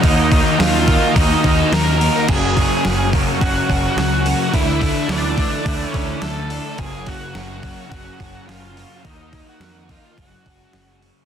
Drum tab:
CC |--------|x-------|--------|--------|
HH |oooooooo|-ooooooo|oooooooo|oooooooo|
SD |--o---o-|--o---o-|--o---o-|--o---o-|
BD |oo-ooo--|oo-ooo--|oo-ooo--|oo-ooo--|

CC |--------|
HH |oooooooo|
SD |--o---o-|
BD |oo-ooo--|